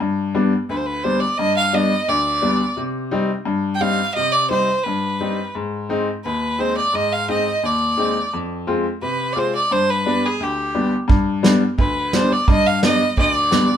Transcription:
0.00 upright piano G2
0.35 upright piano G3 B3 D4
0.69 upright piano D2, violin B4
0.76 violin C5
0.86 violin B4
1.03 upright piano G3 B3 D4, violin C5
1.20 violin D5
1.37 upright piano G2, violin D#5
1.57 violin F5
1.73 upright piano G3 B3 D4, violin D#5
2.08 upright piano D2, violin D5
2.42 upright piano G3 B3 D4
2.77 upright piano C3
3.11 upright piano G3 C4 D#4
3.45 upright piano G2
3.75 violin G5
3.81 upright piano G3 C4 D#4, violin F5
4.14 upright piano C3, violin D#5
4.32 violin D5
4.50 upright piano G3 C4 D#4, violin C5
4.83 upright piano G2, violin B4
5.20 upright piano G3 C4 D#4
5.55 upright piano G#2
5.89 upright piano G#3 C4 D#4
6.24 upright piano D#2, violin B4
6.59 upright piano G#3 C4 D#4, violin C5
6.77 violin D5
6.93 upright piano G#2, violin D#5
7.13 violin F5
7.28 upright piano G#3 C4 D#4, violin D#5
7.63 upright piano D#2, violin D5
7.97 upright piano G#3 C4 D#4
8.33 upright piano F2
8.67 upright piano G#3 C4 F4
9.02 upright piano C3, violin B4
9.32 upright piano G#3 C4 F4, violin D5
9.38 violin C5
9.55 violin D5
9.71 upright piano G2, violin C5
9.90 violin B4
10.06 upright piano G3 B3 D4
10.26 violin G#4
10.40 upright piano D2, violin G4
10.75 upright piano G3 B3 D4
11.08 upright piano G2, kick
11.43 upright piano G3 B3 D4, snare
11.78 upright piano D2, violin B4, kick
12.13 upright piano G3 B3 D4, violin C5, snare
12.32 violin D5
12.48 upright piano G2, violin D#5, kick
12.66 violin F5
12.83 upright piano G3 B3 D4, violin D#5, snare
13.17 upright piano D2, violin D#5, kick
13.30 violin D5
13.51 upright piano G3 B3 D4, snare

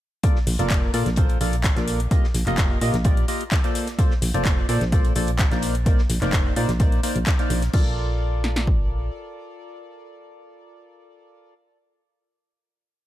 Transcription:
0.23 synth stab A#3 F4 A4 A#4 D5, kick, closed hi-hat
0.36 snare
0.47 fm bass A#1, open hi-hat
0.59 fm bass F1, synth stab A#3 F4 A4 A#4 D5, closed hi-hat
0.70 kick, snare, clap, closed hi-hat
0.94 fm bass A#2, synth stab A#3 F4 A4 A#4 D5, snare, closed hi-hat, open hi-hat
1.06 fm bass A#1, snare, closed hi-hat
1.16 synth stab A#3 F4 A4 A#4 C5, kick, closed hi-hat
1.29 closed hi-hat
1.41 fm bass A#1, synth stab A#3 F4 A4 A#4 D5, closed hi-hat, open hi-hat
1.53 closed hi-hat
1.64 kick, snare, clap, closed hi-hat
1.76 fm bass A#1, synth stab A#3 F4 A4 A#4 D5, snare, closed hi-hat
1.88 closed hi-hat, open hi-hat
2.00 closed hi-hat
2.11 synth stab A#3 F4 G4 A#4 D#5, kick, closed hi-hat
2.24 snare
2.34 fm bass A#1, snare, closed hi-hat, open hi-hat
2.46 fm bass F1, synth stab A#3 F4 G4 A#4 D#5, clap, closed hi-hat
2.57 kick, snare, clap, closed hi-hat
2.81 fm bass A#2, synth stab A#3 F4 G4 A#4 D#5, closed hi-hat, open hi-hat
2.94 fm bass A#1, snare, closed hi-hat
3.04 synth stab A#3 F4 G4 A#4 D5, kick, closed hi-hat
3.17 closed hi-hat
3.28 synth stab A#3 F4 G4 A#4 D#5, closed hi-hat, open hi-hat
3.41 closed hi-hat
3.51 kick, snare, clap, closed hi-hat
3.64 synth stab A#3 F4 A4 C5 D5, closed hi-hat
3.75 closed hi-hat, open hi-hat
3.87 snare, closed hi-hat
3.99 synth stab A#3 F4 A4 C5 D5, kick, closed hi-hat
4.11 snare
4.22 fm bass A#1, open hi-hat
4.34 fm bass F1, synth stab A#3 F4 A4 C5 D5, closed hi-hat
4.45 kick, snare, clap, closed hi-hat
4.69 fm bass A#2, synth stab A#3 F4 A4 C5 D5, snare, closed hi-hat, open hi-hat
4.81 fm bass A#1, snare, closed hi-hat
4.92 synth stab A#3 F4 A4 C5 D5, kick, closed hi-hat
5.05 closed hi-hat
5.15 fm bass A#1, synth stab A#3 F4 A4 C5 D5, closed hi-hat, open hi-hat
5.27 closed hi-hat
5.38 kick, snare, clap, closed hi-hat
5.51 fm bass A#1, synth stab A#3 D#4 A#4 C5 D5, snare, closed hi-hat
5.62 closed hi-hat, open hi-hat
5.75 closed hi-hat
5.86 synth stab A#3 D#4 A#4 C5 D5, kick, closed hi-hat
5.98 snare
6.09 fm bass A#1, snare, closed hi-hat, open hi-hat
6.22 fm bass F1, synth stab A#3 D#4 A#4 C5 D5, clap, closed hi-hat
6.32 kick, snare, clap, closed hi-hat
6.56 fm bass A#2, synth stab A#3 D#4 A#4 C5 D5, closed hi-hat, open hi-hat
6.68 fm bass A#1, snare, closed hi-hat
6.80 synth stab A#3 D#4 A#4 C5 D5, kick, closed hi-hat
6.92 closed hi-hat
7.03 synth stab A#3 D#4 A#4 C5 D5, closed hi-hat, open hi-hat
7.16 fm bass A#1, closed hi-hat
7.26 kick, snare, clap, closed hi-hat
7.39 synth stab A#3 D#4 A#4 C5 D5, closed hi-hat
7.50 fm bass A#1, closed hi-hat, open hi-hat
7.62 snare, closed hi-hat
7.74 fm bass A#1, synth stab F4 A4 A#4 D5, kick, crash
8.44 snare
8.56 snare
8.67 kick

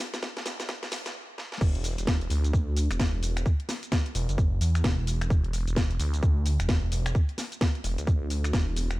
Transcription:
0.00 snare, open hi-hat, shaker
0.14 snare, closed hi-hat, shaker
0.23 kick, snare, shaker
0.37 snare, closed hi-hat
0.46 detuned saw bass E1, snare, open hi-hat, shaker
0.60 snare, closed hi-hat, shaker
0.69 kick, snare, shaker
0.83 snare
0.92 snare, open hi-hat, shaker
1.06 detuned saw bass E2, snare, closed hi-hat, shaker
1.38 snare
1.52 snare
1.61 detuned saw bass E1, kick, crash, shaker
1.75 closed hi-hat
1.84 open hi-hat, shaker
1.98 detuned saw bass E1, closed hi-hat, shaker
2.07 kick, snare, shaker
2.21 closed hi-hat
2.30 detuned saw bass D2, open hi-hat, shaker
2.44 closed hi-hat, shaker
2.53 detuned saw bass D2, kick, shaker
2.77 open hi-hat, shaker
2.91 detuned saw bass E1, finger snap, closed hi-hat, shaker
3.00 kick, snare, shaker
3.23 detuned saw bass E1, open hi-hat, shaker
3.37 finger snap, closed hi-hat, shaker
3.46 kick, shaker
3.60 closed hi-hat
3.69 snare, open hi-hat, shaker
3.83 closed hi-hat, shaker
3.92 kick, snare, shaker
4.06 closed hi-hat
4.15 detuned saw bass E1, open hi-hat, shaker
4.29 detuned saw bass F#1, closed hi-hat, shaker
4.38 kick, shaker
4.61 detuned saw bass E2, open hi-hat, shaker
4.75 finger snap, closed hi-hat, shaker
4.84 detuned saw bass E1, kick, snare, shaker
5.07 open hi-hat, shaker
5.21 finger snap, closed hi-hat, shaker
5.30 detuned saw bass E1, kick, shaker
5.44 closed hi-hat
5.53 open hi-hat, shaker
5.67 detuned saw bass E1, closed hi-hat, shaker
5.76 kick, snare, shaker
5.91 closed hi-hat
6.00 detuned saw bass D2, open hi-hat, shaker
6.14 closed hi-hat, shaker
6.23 detuned saw bass D2, kick, shaker
6.46 open hi-hat, shaker
6.60 detuned saw bass E1, finger snap, closed hi-hat, shaker
6.69 kick, snare, shaker
6.92 detuned saw bass E1, open hi-hat, shaker
7.06 finger snap, closed hi-hat, shaker
7.15 kick, shaker
7.29 closed hi-hat
7.38 snare, open hi-hat, shaker
7.52 closed hi-hat, shaker
7.61 kick, snare, shaker
7.75 closed hi-hat
7.84 detuned saw bass E1, open hi-hat, shaker
7.98 detuned saw bass D2, closed hi-hat, shaker
8.07 kick, shaker
8.21 detuned saw bass D2
8.30 open hi-hat, shaker
8.44 finger snap, closed hi-hat, shaker
8.53 detuned saw bass E1, kick, snare, shaker
8.76 open hi-hat, shaker
8.91 finger snap, closed hi-hat, shaker

